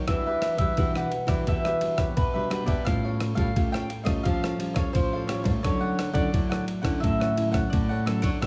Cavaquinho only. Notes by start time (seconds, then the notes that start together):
0.07 D4 G4 B4 E5
0.26 G4 B4 E5
0.59 G4 B4 E5
0.78 D4 G4 B4 E5
0.95 G4 B4 E5
1.12 muted cavaquinho stroke
1.27 G4 B4 E5
1.46 D4 G4 B4 E5
1.64 G4 B4 E5
1.81 muted cavaquinho stroke
1.96 G4 B4 E5
2.34 G4 B4 E5
2.50 D4 G4 B4 E5
2.67 G4 B4 E5
2.86 G4 A4 C#5 F5
3.04 A4 C#5 F5
3.37 A4 C#5 F5
3.56 G4 A4 C#5 F5
3.73 A4 C#5 F5
3.90 muted cavaquinho stroke
4.06 A4 C#5 F5
4.25 G4 A4 C#5 F5
4.42 A4 C#5 F5
4.59 muted cavaquinho stroke
4.76 A4 C#5 F5
5.13 A4 C#5 F5
5.28 G4 A4 C#5 F5
5.44 A4 C#5 F5
5.64 D4 A4 C#5 F#5
5.80 A4 C#5 F#5
6.13 A4 C#5 F#5
6.32 D4 A4 C#5 F#5
6.49 A4 C#5 F#5
6.66 muted cavaquinho stroke
6.82 A4 C#5 F#5
7.02 D4 A4 C#5 F#5
7.20 A4 C#5 F#5
7.36 muted cavaquinho stroke
7.52 A4 C#5 F#5
7.89 A4 C#5 F#5
8.05 D4 A4 C#5 F#5
8.22 A4 C#5 F#5
8.41 D4 A4 C#5 F#5